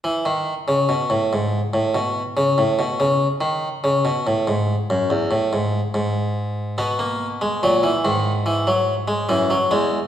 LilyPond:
\new Staff \with { instrumentName = "Harpsichord" } { \clef bass \time 4/4 \key e \major \tempo 4 = 71 << { e16 dis8 cis16 b,16 a,16 gis,8 a,16 b,8 cis16 a,16 b,16 cis8 | dis8 cis16 b,16 a,16 gis,8 fis,16 e,16 a,16 gis,8 gis,4 | b16 ais8 gis16 fis16 e16 dis8 e16 fis8 gis16 e16 fis16 gis8 | } \\ { r1 | r1 | b,4 ais,8 gis,4. fis,8 e,8 | } >> }